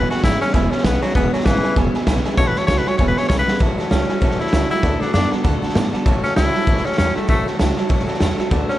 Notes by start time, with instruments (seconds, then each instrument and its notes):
Already playing: clean electric guitar E2 B2, steel-string acoustic guitar E3 G#3 B3 C#4
0.10 steel-string acoustic guitar B3 C#4 G#4, tenor saxophone F#4, upright piano B4 E5 G#5, muted upright bass stroke, snare
0.17 snare
0.23 upright bass G#1, clean electric guitar E2 C#3, steel-string acoustic guitar G#3 C#4 G#4, tenor saxophone E4, upright piano B4 E5 G#5, kick, snare, hi-hat pedal
0.41 clean electric guitar E2 C#3, steel-string acoustic guitar B3 C#4 G#4, tenor saxophone C#4, upright piano B4 E5 G#5, snare
0.48 snare
0.53 upright bass E1, clean electric guitar E2 B2, steel-string acoustic guitar E3 G#3 B3 C#4 G#4, tenor saxophone E4, upright piano B4 E5 G#5, kick, snare
0.71 steel-string acoustic guitar B3 C#4 G#4, tenor saxophone C#4, upright piano B4 E5 G#5, muted upright bass stroke, snare
0.78 snare
0.84 upright bass B1, clean electric guitar E2 C#3, steel-string acoustic guitar G#3 B3 C#4 G#4, tenor saxophone B3, upright piano B4 E5 G#5, kick, snare, hi-hat pedal
1.02 clean electric guitar E2 C#3, tenor saxophone F#3, steel-string acoustic guitar B3 C#4 G#4, upright piano B4 E5 G#5, muted upright bass stroke, snare
1.09 snare
1.14 upright bass E1, clean electric guitar E2 B2, steel-string acoustic guitar E3 G#3 B3 C#4 G#4, tenor saxophone B3, upright piano B4 E5 G#5, kick, snare
1.33 tenor saxophone F#3, steel-string acoustic guitar B3 C#4 G#4, upright piano B4 E5 G#5, muted upright bass stroke, snare
1.40 snare
1.45 upright bass G#1, clean electric guitar E2 C#3, tenor saxophone E3, steel-string acoustic guitar G#3 B3 C#4 G#4, upright piano B4 E5 G#5, kick, snare, hi-hat pedal
1.63 clean electric guitar E2 C#3, steel-string acoustic guitar B3 C#4 G#4, upright piano B4 E5 G#5, muted upright bass stroke, snare
1.75 upright bass E1, clean electric guitar E2 B2, steel-string acoustic guitar E3 G#3 B3 C#4 G#4, upright piano B4 E5 G#5, kick, snare
1.94 steel-string acoustic guitar B3 C#4 G#4, upright piano B4 E5 G#5, muted upright bass stroke, snare
2.06 upright bass B1, clean electric guitar E2 C#3, steel-string acoustic guitar G#3 B3 C#4 G#4, upright piano B4 E5 G#5, kick, snare, hi-hat pedal
2.24 clean electric guitar E2 C#3, steel-string acoustic guitar B3 C#4 G#4, upright piano B4 E5 G#5, muted upright bass stroke, snare
2.37 upright bass A1, clean electric guitar A2 E3, steel-string acoustic guitar A2 E3 F#3 A3 C#4 F#4, tenor saxophone C#5, upright piano C#5 E5 A5, kick, snare
2.47 tenor saxophone B4
2.54 steel-string acoustic guitar F#3 A3 C#4 F#4, upright piano C#5 E5 A5, tenor saxophone C#5, muted upright bass stroke, snare
2.67 upright bass C#2, clean electric guitar A2 F#3, steel-string acoustic guitar F#3 A3 C#4 F#4, tenor saxophone C#5, upright piano C#5 E5 A5, kick, snare, hi-hat pedal
2.78 tenor saxophone B4
2.85 clean electric guitar A2 F#3, steel-string acoustic guitar F#3 A3 C#4 F#4, upright piano C#5 E5 G#5, tenor saxophone C#5, muted upright bass stroke, snare
2.98 upright bass E1, clean electric guitar E2 B2, steel-string acoustic guitar E3 G#3 B3 C#4 G#4, upright piano B4 E5 G#5, tenor saxophone C#5, kick, snare
3.08 tenor saxophone B4
3.16 steel-string acoustic guitar B3 C#4 G#4, upright piano B4 E5 G#5, tenor saxophone C#5, muted upright bass stroke, snare
3.23 snare
3.29 upright bass B1, clean electric guitar E2 C#3, steel-string acoustic guitar G#3 B3 C#4 G#4, upright piano B4 E5 G#5, tenor saxophone C#5, kick, snare, hi-hat pedal
3.39 tenor saxophone B4
3.47 clean electric guitar E2 C#3, steel-string acoustic guitar B3 C#4 G#4, upright piano B4 E5 F#5, muted upright bass stroke, snare
3.59 upright bass A1, steel-string acoustic guitar A2 E3 F#3 A3 C#4 F#4, clean electric guitar A2 E3, upright piano C#5 E5 A5, kick, snare
3.77 steel-string acoustic guitar F#3 A3 C#4 F#4, upright piano C#5 E5 A5, muted upright bass stroke, snare
3.90 upright bass C#2, clean electric guitar A2 F#3, steel-string acoustic guitar F#3 A3 C#4 F#4, tenor saxophone C#4, upright piano C#5 E5 A5, snare, hi-hat pedal
4.08 clean electric guitar A2 F#3, steel-string acoustic guitar F#3 A3 C#4 F#4, upright piano C#5 E5 G#5, muted upright bass stroke, snare
4.21 upright bass A1, steel-string acoustic guitar A2 E3 F#3 A3 C#4 F#4, clean electric guitar A2 E3, upright piano C#5 E5 A5, kick, snare
4.31 snare
4.39 steel-string acoustic guitar F#3 A3 C#4 F#4, tenor saxophone E4, upright piano C#5 E5 A5, muted upright bass stroke, snare
4.46 snare
4.53 upright bass C#2, clean electric guitar A2 F#3, steel-string acoustic guitar F#3 A3 C#4 F#4, upright piano C#5 E5 A5, snare, hi-hat pedal
4.70 clean electric guitar A2 F#3, steel-string acoustic guitar F#3 A3 C#4 F#4, tenor saxophone E4, upright piano C#5 E5 F#5, muted upright bass stroke, snare
4.83 upright bass D2, clean electric guitar D3 A3, steel-string acoustic guitar D3 F#3 B3 F#4 A4, upright piano D5 F#5 A5, kick, snare
5.00 steel-string acoustic guitar B3 F#4 A4, tenor saxophone D4, upright piano D5 F#5 A5, muted upright bass stroke, snare
5.13 upright bass F#2, clean electric guitar D3 B3, steel-string acoustic guitar F#3 B3 F#4 A4, tenor saxophone D4, upright piano D5 F#5 A5, snare, hi-hat pedal
5.31 clean electric guitar D3 B3, steel-string acoustic guitar B3 F#4 A4, upright piano D5 F#5 A5, muted upright bass stroke, snare
5.44 upright bass D2, steel-string acoustic guitar D3 F#3 B3 F#4 A4, clean electric guitar D3 A3, upright piano D5 F#5 A5, kick, snare
5.62 steel-string acoustic guitar B3 F#4 A4, upright piano D5 F#5 A5, muted upright bass stroke, snare
5.69 snare
5.75 upright bass A2, clean electric guitar D3 B3, steel-string acoustic guitar F#3 B3 F#4 A4, upright piano D5 F#5 A5, snare, hi-hat pedal
5.93 clean electric guitar D3 B3, steel-string acoustic guitar B3 F#4 A4, upright piano D5 F#5 A5, muted upright bass stroke, snare
6.05 upright bass A1, clean electric guitar A2 E3, steel-string acoustic guitar A2 E3 F#3 A3 C#4 F#4, upright piano C#5 E5 A5, kick, snare
6.24 steel-string acoustic guitar F#3 A3 C#4 F#4, tenor saxophone C#4, upright piano C#5 E5 A5, muted upright bass stroke, snare
6.36 upright bass C#2, clean electric guitar A2 F#3, steel-string acoustic guitar F#3 A3 C#4 F#4, tenor saxophone E4, upright piano C#5 E5 A5, snare, hi-hat pedal
6.53 clean electric guitar A2 F#3, steel-string acoustic guitar F#3 A3 C#4 F#4, upright piano C#5 E5 A5, snare
6.66 upright bass A1, clean electric guitar A2 E3, steel-string acoustic guitar A2 E3 F#3 A3 C#4 F#4, upright piano C#5 E5 A5, kick, snare
6.76 snare
6.85 steel-string acoustic guitar F#3 A3 C#4 F#4, tenor saxophone C#4, upright piano C#5 E5 A5, muted upright bass stroke, snare
6.92 snare
6.97 upright bass E2, clean electric guitar A2 F#3, steel-string acoustic guitar F#3 A3 C#4 F#4, tenor saxophone C#4, upright piano C#5 E5 A5, snare, hi-hat pedal
7.15 clean electric guitar A2 F#3, steel-string acoustic guitar F#3 A3 C#4 F#4, tenor saxophone A3, upright piano C#5 E5 A5, muted upright bass stroke, snare
7.27 upright bass A1, steel-string acoustic guitar A2 E3 F#3 A3 C#4 F#4, clean electric guitar A2 E3, tenor saxophone A3, upright piano C#5 E5 A5, kick, snare
7.46 steel-string acoustic guitar F#3 A3 C#4 F#4, upright piano C#5 E5 A5, muted upright bass stroke, snare
7.59 upright bass C#2, clean electric guitar A2 F#3, steel-string acoustic guitar F#3 A3 C#4 F#4, upright piano C#5 E5 A5, snare, hi-hat pedal
7.77 clean electric guitar A2 F#3, steel-string acoustic guitar F#3 A3 C#4 F#4, upright piano C#5 E5 A5, muted upright bass stroke, snare
7.89 upright bass A1, steel-string acoustic guitar A2 E3 F#3 A3 C#4 F#4, clean electric guitar A2 E3, upright piano C#5 E5 A5, kick, snare
7.99 snare
8.07 steel-string acoustic guitar F#3 A3 C#4 F#4, upright piano C#5 E5 A5, muted upright bass stroke, snare
8.14 snare
8.19 upright bass E2, clean electric guitar A2 F#3, steel-string acoustic guitar F#3 A3 C#4 F#4, upright piano C#5 E5 A5, snare, hi-hat pedal
8.38 clean electric guitar A2 F#3, steel-string acoustic guitar F#3 A3 C#4 F#4, upright piano C#5 E5 A5, muted upright bass stroke, snare
8.50 upright bass D2, clean electric guitar D3 A3, steel-string acoustic guitar D3 F#3 B3 F#4 A4, upright piano D5 F#5 A5, kick, snare
8.69 steel-string acoustic guitar B3 F#4 A4, tenor saxophone C#4, upright piano D5 F#5 A5, muted upright bass stroke, snare